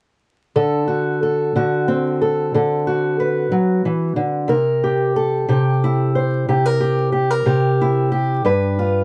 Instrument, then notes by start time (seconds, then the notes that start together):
steel-string acoustic guitar
0.56 D3 A4
0.88 F#4
1.23 A4
1.56 D3 F#4
1.88 C4
2.21 A4
2.54 D3 A4
2.87 F#4
3.20 B4
3.52 F#3
3.85 E3
4.16 D3
4.48 C3 A#4
4.84 G4
5.16 A4
5.49 C3 G4
5.84 E4
6.15 C5
6.48 C3 G4
6.66 A#4
6.80 G4
7.12 G4
7.31 A#4
7.46 C3 G4
7.81 E4
8.12 G4
8.45 G2 B4
8.79 F4